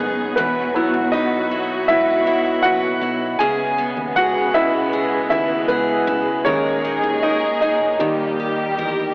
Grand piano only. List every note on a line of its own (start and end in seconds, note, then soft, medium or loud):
0.00 0.33 G#3 soft
0.00 0.15 B3 medium
0.00 0.39 C#4 medium
0.00 0.39 D#4 medium
0.00 0.14 B4 medium
0.00 0.40 C#5 medium
0.00 0.39 D#5 medium
0.36 0.74 B3 medium
0.36 1.15 B4 medium
0.74 1.85 F#3 soft
0.74 1.85 B3 soft
0.74 1.85 E4 medium
1.12 1.85 D#4 medium
1.12 1.91 D#5 medium
1.88 2.61 E4 medium
1.88 2.60 E5 medium
2.63 3.18 F#4 medium
2.63 3.16 F#5 medium
3.39 4.13 G#4 medium
3.39 4.18 G#5 loud
4.16 4.53 F#4 medium
4.16 4.56 F#5 medium
4.54 5.65 C#3 medium
4.54 5.65 B3 medium
4.54 5.28 E4 medium
4.54 5.66 D#5 medium
4.54 5.29 E5 medium
5.30 5.40 E4 medium
5.30 5.39 E5 medium
5.68 6.23 B3 medium
5.68 6.22 B4 medium
6.44 6.96 G#3 soft
6.44 6.97 A#3 soft
6.44 7.19 C#4 medium
6.44 6.97 D#4 medium
6.44 7.25 C#5 medium
7.23 7.59 D#4 medium
7.23 7.60 D#5 medium
7.61 7.99 D#4 medium
7.61 9.13 D#5 medium
7.99 8.51 G3 medium
7.99 8.52 A#3 soft
7.99 8.52 D#4 medium